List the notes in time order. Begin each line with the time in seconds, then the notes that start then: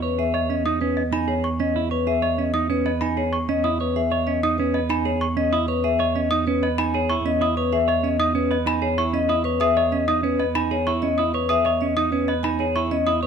Already playing: E2
0.02 B4 C#5
0.19 G#4 E5
0.34 C#5 D#5
0.50 C#4 D#5
0.66 D#4 D#6
0.81 C#4 B4
0.97 D#5
1.12 D#4 G#5 B5
1.28 G#4 C#5
1.44 C#6
1.60 C#4 D#5
1.76 E4
1.91 B4 C#5
2.07 G#4 E5
2.22 C#5 D#5
2.38 C#4 D#5
2.54 D#4 D#6
2.70 C#4 B4
2.86 B4 D#5
3.01 D#4 G#5 B5
3.17 G#4 C#5
3.33 C#6
3.49 C#4 D#5
3.64 E4 D#6
3.80 B4 C#5
3.96 G#4 E5
4.11 C#5 D#5
4.27 C#4 D#5
4.43 D#4 D#6
4.58 C#4 B4
4.74 B4 D#5
4.89 D#4 G#5 B5
5.05 G#4 C#5
5.21 C#6
5.37 C#4 D#5
5.53 E4 D#6
5.68 B4 C#5
5.84 G#4 E5
5.99 C#5 D#5
6.16 C#4 D#5
6.31 D#4 D#6
6.47 C#4 B4
6.63 B4 D#5
6.78 D#4 G#5 B5
6.94 G#4 C#5
7.10 E4 C#6
7.26 C#4 D#5
7.41 E4 D#6
7.57 B4 C#5
7.73 G#4 E5
7.88 C#5 D#5
8.03 C#4 D#5
8.19 D#4 D#6
8.35 C#4 B4
8.51 B4 D#5
8.66 D#4 G#5 B5
8.82 G#4 C#5
8.98 E4 C#6
9.13 C#4 D#5
9.29 E4 D#6
9.44 B4 C#5
9.60 G#4 E5 D#6
9.77 C#5 D#5
9.92 C#4 D#5
10.08 D#4 D#6
10.23 C#4 B4
10.39 B4 D#5
10.55 D#4 G#5 B5
10.71 G#4 C#5
10.87 E4 C#6
11.02 C#4 D#5
11.18 E4 D#6
11.34 B4 C#5
11.49 G#4 E5 D#6
11.65 C#5 D#5
11.81 C#4 D#5
11.97 D#4 D#6
12.12 C#4 B4
12.28 B4 D#5
12.43 D#4 G#5 B5
12.59 G#4 C#5
12.76 E4 C#6
12.91 C#4 D#5
13.07 E4 D#6
13.23 B4 C#5